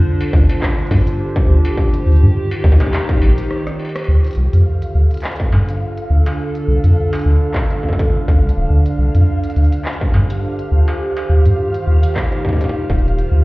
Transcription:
Already playing: ambient pad D3 D4 F4 A4 C5
0.21 closed hi-hat, struck metal
0.33 sub bass D2, kick
0.49 ambient pad G4, closed hi-hat, struck metal
0.62 kick, clap
0.78 closed hi-hat
0.81 closed hi-hat
0.87 closed hi-hat
0.91 sub bass G2, kick, closed hi-hat, struck metal, shaker
0.96 closed hi-hat
1.01 closed hi-hat
1.07 closed hi-hat
1.36 kick, closed hi-hat
1.49 sub bass D2
1.65 closed hi-hat, struck metal
1.77 ambient pad D#3, kick
1.94 closed hi-hat
2.06 sub bass D#2, shaker
2.12 shaker
2.16 ambient pad D#4, shaker
2.22 sub bass G2
2.51 struck metal
2.64 sub bass D#2, kick
2.72 kick
2.80 kick, closed hi-hat, struck metal
2.87 kick
2.93 clap, struck metal
3.09 kick, closed hi-hat
3.22 sub bass A#1, struck metal
3.38 closed hi-hat
3.51 cross-stick
3.67 cross-stick, closed hi-hat
3.79 struck metal
3.85 struck metal
3.89 struck metal
3.96 cross-stick, closed hi-hat, struck metal
3.99 struck metal
4.04 struck metal
4.08 sub bass D2, ambient pad D3, synth texture F5
4.24 closed hi-hat
4.27 closed hi-hat
4.31 closed hi-hat
4.33 closed hi-hat
4.35 sub bass C2, closed hi-hat
4.53 sub bass F2, closed hi-hat
4.74 ambient pad D4
4.82 closed hi-hat
4.95 sub bass D2
5.11 closed hi-hat
5.14 closed hi-hat
5.17 closed hi-hat
5.20 clap, closed hi-hat
5.24 closed hi-hat
5.28 closed hi-hat
5.32 closed hi-hat
5.36 closed hi-hat
5.40 ambient pad A4, kick, closed hi-hat
5.52 sub bass G2, struck metal
5.69 closed hi-hat
5.97 closed hi-hat
6.10 sub bass D2
6.26 closed hi-hat, struck metal
6.55 closed hi-hat
6.68 sub bass C2
6.84 sub bass F2, closed hi-hat
7.13 closed hi-hat, struck metal
7.15 closed hi-hat
7.19 closed hi-hat
7.21 closed hi-hat
7.23 sub bass D2, closed hi-hat
7.54 kick, clap
7.71 closed hi-hat
7.83 kick
7.89 kick
7.93 kick
7.99 kick, closed hi-hat
8.28 sub bass D2, kick, closed hi-hat
8.41 sub bass C2
8.49 closed hi-hat
8.57 sub bass D1
8.70 sub bass D2
8.86 closed hi-hat
8.99 sub bass C2
9.15 sub bass F2, ambient pad F4, closed hi-hat
9.30 ambient pad C5
9.44 closed hi-hat
9.50 closed hi-hat
9.56 sub bass D2, closed hi-hat
9.64 closed hi-hat
9.72 ambient pad G4, closed hi-hat
9.85 clap
9.93 closed hi-hat
10.01 kick
10.14 sub bass G2, struck metal
10.30 closed hi-hat
10.59 closed hi-hat
10.72 sub bass D2
10.88 struck metal
11.00 ambient pad D#3
11.17 closed hi-hat, struck metal
11.29 sub bass D#2
11.46 sub bass G2, closed hi-hat
11.65 ambient pad D#4
11.74 closed hi-hat
11.87 sub bass D#2
12.03 closed hi-hat
12.16 kick, clap
12.32 closed hi-hat
12.45 kick
12.49 kick
12.53 kick
12.57 kick
12.61 kick, closed hi-hat
12.64 kick
12.67 kick
12.69 kick
12.90 sub bass D#1, kick, closed hi-hat
12.98 closed hi-hat
13.08 closed hi-hat
13.19 closed hi-hat
13.31 sub bass D2, ambient pad D3

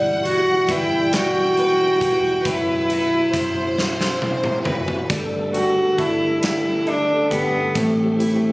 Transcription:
Already playing: fingered electric bass G1, tonewheel organ B2 E3 G3 E4, nylon-string guitar G3 E4, violin section F#5
0.25 nylon-string guitar E4, cello F#4, closed hi-hat
0.68 fingered electric bass G1, cello E4, nylon-string guitar B4, violin section G5, kick, closed hi-hat
1.13 cello F#4, snare, closed hi-hat
1.57 nylon-string guitar B4, closed hi-hat
2.01 fingered electric bass E1, nylon-string guitar E4, kick, closed hi-hat
2.24 nylon-string guitar F#4
2.45 fingered electric bass F#1, nylon-string guitar F#3, tonewheel organ E4, cello E4, violin section B4, kick, closed hi-hat
2.90 nylon-string guitar F#4, closed hi-hat
3.32 fingered electric bass F#1, violin section C5, kick, snare, closed hi-hat
3.78 nylon-string guitar F#4, snare
4.01 snare
4.22 high tom
4.44 mid tom
4.65 fingered electric bass F#1, nylon-string guitar F#4, violin section B4, mid tom
4.88 floor tom
5.10 fingered electric bass G1, tonewheel organ D3 G3 A3 B3 A4, nylon-string guitar G3, kick, closed hi-hat
5.54 cello F#4, nylon-string guitar G4, closed hi-hat
5.98 fingered electric bass G1, cello E4, nylon-string guitar A4, kick, closed hi-hat
6.43 cello E4, nylon-string guitar G4, snare, closed hi-hat
6.86 cello D4, nylon-string guitar A4, closed hi-hat
7.30 fingered electric bass G1, cello B3, nylon-string guitar G4, kick, closed hi-hat
7.75 fingered electric bass A1, nylon-string guitar A2, tonewheel organ E3 C4 G4, cello A3, kick, closed hi-hat
8.19 nylon-string guitar E4, closed hi-hat

